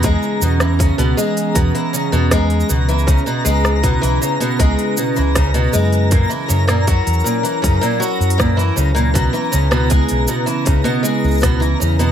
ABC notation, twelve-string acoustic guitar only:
X:1
M:4/4
L:1/16
Q:1/4=79
K:C#dor
V:1 name="Twelve-string acoustic guitar" clef=bass
G,2 B,, E, C, B,, G,2 B,, E, C, B,, G,2 B,, E, | C, B,, G,2 B,, E, C, B,, G,2 B,, E, C, B,, G,2 | A,, E, C, A,, F,2 A,, E, C, A,, F,2 A,, E, C, A,, | B,, E, C, B,, G,2 B,, E, C, B,, G,2 B,, E, C, B,, |]